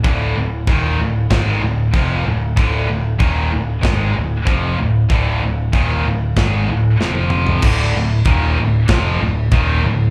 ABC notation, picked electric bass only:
X:1
M:4/4
L:1/8
Q:1/4=95
K:Dm
V:1 name="Picked electric bass" clef=bass
D,,, D,,, _E,,, D,,, ^G,,, D,,, F,,, D,,, | D,,, D,,, _E,,, D,,, ^G,,, D,,, F,,, D,,, | D,,, D,,, _E,,, D,,, ^G,,, D,,, F,,,2 | D,,, D,,, _E,,, D,,, F,,, D,,, E,,, D,,, |]